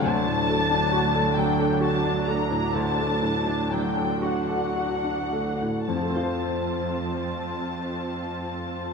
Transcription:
X:1
M:6/8
L:1/16
Q:3/8=39
K:Dphr
V:1 name="Violin section"
a6 g2 a2 b2 | a4 g2 ^f6 | a12 |]
V:2 name="Viola section"
[^F,D]12- | [^F,D]6 [D^F]6 | [CF]12 |]
V:3 name="Grand piano"
D,, A,, A, D ^F A ^F, A F D A, A,, | D,, A, A,, D ^F, A ^F A F D A, A,, | [F,,F,A,CFc]12 |]
V:4 name="Harp"
z12 | z12 | [F,A,CFc]12 |]
V:5 name="Harp" clef=bass
[D,^F,A,D]12- | [D,^F,A,D]12- | [D,^F,A,D]12 |]
V:6 name="Cello section" clef=bass
D,,12- | D,,12 | F,,12 |]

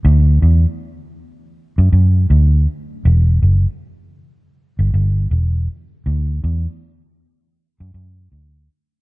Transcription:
X:1
M:4/4
L:1/16
Q:"Swing 16ths" 1/4=80
K:Em
V:1 name="Fingered electric bass" clef=bass
D,,2 E,, z6 F,, F,,2 D,,2 z2 | E,,,2 F,,, z6 G,,, G,,,2 E,,,2 z2 | D,,2 E,, z6 F,, F,,2 D,,2 z2 |]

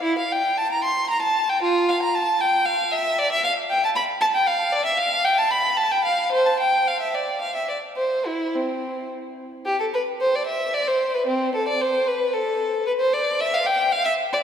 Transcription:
X:1
M:3/4
L:1/16
Q:1/4=113
K:F
V:1 name="Violin"
E f g2 a b c'2 b a2 g | F2 f b a2 g2 f2 e2 | [K:C] d e f2 g a b2 a g f2 | d e f2 g a b2 a g f2 |
c a g2 f e d2 f e d2 | c2 E2 C4 z4 | G A B2 c d e2 d c2 B | C2 A d c2 B2 A4 |
B c d2 e f g2 f e2 d |]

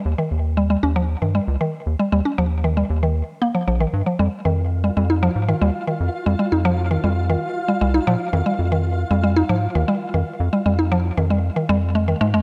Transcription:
X:1
M:4/4
L:1/16
Q:1/4=116
K:Fm
V:1 name="Synth texture"
z16 | z16 | [Ff]16- | [Ff]16- |
[Ff]16- | [Ff]16 |]
V:2 name="Synth arpeggio sound" clef=bass
z E, z2 G, G, D F, z E, G, z E, z2 G, | G, D F, z E, G, z E, z2 B, F, F, E, z F, | G, z E, z2 G, G, E F, z E, G, z E, z2 | G, G, E F, z E, G, z E, z2 G, G, E F, z |
E, G, z E, z2 G, G, E F, z E, G, z E, z | z G, G, E F, z E, G, z E, G, z A, E, A, A, |]
V:3 name="Analog synth bass" clef=bass
E,, z E,,4 E,,3 G,, z D,, z2 E,, z | E,, z E,,4 E,,3 z3 B,,, z G,, z | F,, z F,,4 F,,3 A,, z E,, z2 F,, z | F,, z F,,4 F,,3 z3 C,, z B,, z |
F,, z F,,4 F,,3 A,, z E,, z2 F,, z | F,, z F,,4 F,,3 z F,,4 A,, F,, |]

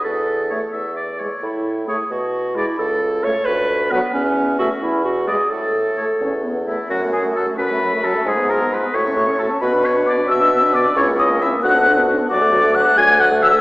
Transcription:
X:1
M:6/8
L:1/16
Q:3/8=89
K:A
V:1 name="Flute"
z4 e z4 z e z | z4 e z4 z e z | z4 e z4 z f z | z4 e z4 z e z |
z4 e z4 z e2 | [K:F#m] f2 g2 a2 b4 a2 | _a2 ^a2 _c'2 ^c'4 =a2 | b2 c'2 d'2 e'4 d'2 |
c'2 ^d'2 e'2 f'4 z2 | [K:Dlyd] d'4 f'2 g'2 f'2 e'2 |]
V:2 name="Oboe"
z4 c z e2 d2 c2 | z4 c z4 z d z | z4 c z4 z B z | z4 e z4 z d z |
z4 c z4 z E2 | [K:F#m] F2 G2 A2 B4 A2 | _A2 ^A2 _c2 ^c4 =A2 | B2 c2 d2 e4 d2 |
c2 ^d2 e2 f4 z2 | [K:Dlyd] d4 f2 g2 f2 e2 |]
V:3 name="Clarinet"
A6 z6 | E4 G2 F4 E2 | A4 c2 B4 B,2 | C4 F2 E2 F2 G2 |
A8- A2 z2 | [K:F#m] C F C F C F C F C F C F | =F _A F A F A ^F =A F A F A | F B F B F B F B F B F B |
E C E C E C F D F D F D | [K:Dlyd] F A F A F A F A F A F A |]
V:4 name="French horn"
z4 A, z4 z G, z | z4 A, z4 z G, z | z4 A, z4 z F, z | z4 A, z4 z G, z |
z4 A, z C2 B,2 A,2 | [K:F#m] F, A, F, A, F, A, F, A, F, A, F, A, | _A, _C A, C A, C =A, ^C A, C A, C | B, D B, D B, D B, D B, D B, D |
C ^A, C A, C A, D B, D B, D B, | [K:Dlyd] F, A, F, A, F, A, F, A, F, A, F, A, |]
V:5 name="Bassoon" clef=bass
E,,6 E,,6 | A,,6 B,,6 | C,,6 D,,6 | E,,6 E,,6 |
A,,6 E,,6 | [K:F#m] F,,6 F,,6 | _A,,6 =A,,6 | B,,6 B,,6 |
C,,6 D,,6 | [K:Dlyd] D,,6 D,,6 |]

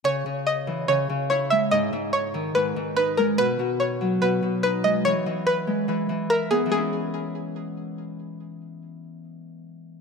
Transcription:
X:1
M:4/4
L:1/8
Q:1/4=144
K:C#m
V:1 name="Synth pluck"
c2 d2 c2 c e | d2 c2 B2 B ^A | B2 c2 B2 B d | c2 B4 ^A G |
G6 z2 | z8 |]
V:2 name="Harp" clef=bass
C, C,2 E, C, C, E G, | G,, G,,2 D, G,, G,, D G, | B,, B,,2 F, B,, B,, D G, | E, E,2 G, E, E, e B, |
[E,G,CE]8- | [E,G,CE]8 |]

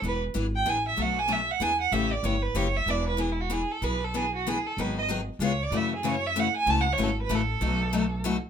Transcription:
X:1
M:3/4
L:1/8
Q:"Swing" 1/4=190
K:Emix
V:1 name="Violin"
B z2 =g ^g e | f g e f g f | e d c B c e | d B (3G E F G A |
B A G F G A | B ^d z2 c =d | e G c e f g | (3a f c A B A2- |
A4 z2 |]
V:2 name="Steel-string acoustic guitar"
[E,B,DG] z [E,B,DG] z [E,B,DG] z | [B,,F,A,DF] z [B,,F,A,DF] z [E,B,DG] z | [C,E,A,C=G] z [C,E,A,CG] z [C,E,A,CG] z | [E,B,DG] z [E,B,DG] z [E,B,DG] z |
[E,B,DG] z [E,B,DG] z [E,B,DG] z | [^D,F,B,^DG] z [D,F,B,DG] z [C,G,B,^EG] z | [C,E,A,CF] z [C,E,A,CF] z [C,E,A,CF] z | [C,E,A,CF] z [C,E,A,CF] z [C,E,A,CF] z |
[B,,F,A,^DF] z [B,,F,A,DF] z [B,,F,A,DF] z |]
V:3 name="Upright bass" clef=bass
E,,,2 G,,,2 A,,,2 | B,,,4 E,,2 | A,,,2 =G,,,2 F,,,2 | E,,,6 |
B,,,6 | G,,,4 C,,2 | F,,6 | C,,2 G,,,2 A,,,2 |
B,,,6 |]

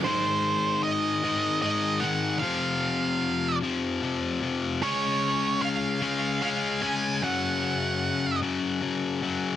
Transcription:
X:1
M:6/8
L:1/8
Q:3/8=50
K:G#m
V:1 name="Lead electric guitar"
^B2 d2 d f | =f3 z3 | c2 ^e2 e g | f3 z3 |]
V:2 name="Overdriven electric guitar" clef=bass
[G,,D,G,]3 [G,,D,G,] [G,,D,G,] [G,,D,G,] | [=F,,=C,=F,]3 [F,,C,F,] [F,,C,F,] [F,,C,F,] | [C,G,C]3 [C,G,C] [C,G,C] [C,G,C] | [F,,C,F,]3 [F,,C,F,] [F,,C,F,] [F,,C,F,] |]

